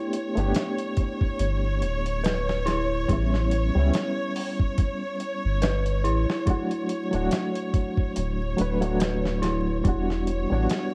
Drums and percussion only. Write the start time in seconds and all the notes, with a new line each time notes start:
0.13 closed hi-hat
0.37 closed hi-hat
0.55 snare, closed hi-hat
0.78 closed hi-hat
0.97 kick, closed hi-hat
1.21 kick
1.39 closed hi-hat
1.82 closed hi-hat
2.06 closed hi-hat
2.24 snare, closed hi-hat
2.49 snare
2.67 snare, closed hi-hat
3.09 kick, closed hi-hat
3.34 snare
3.51 closed hi-hat
3.94 snare, closed hi-hat
4.36 open hi-hat
4.60 kick
4.78 kick, closed hi-hat
5.20 closed hi-hat
5.62 snare, closed hi-hat
5.86 closed hi-hat
6.05 closed hi-hat
6.30 snare
6.47 kick, closed hi-hat
6.71 closed hi-hat
6.89 closed hi-hat
7.13 closed hi-hat
7.31 snare, closed hi-hat
7.55 closed hi-hat
7.74 kick, closed hi-hat
7.97 kick
8.16 closed hi-hat
8.58 closed hi-hat
8.82 closed hi-hat
9.00 snare, closed hi-hat
9.25 snare
9.43 snare, closed hi-hat
9.85 kick, closed hi-hat
10.10 snare
10.27 closed hi-hat
10.70 snare, closed hi-hat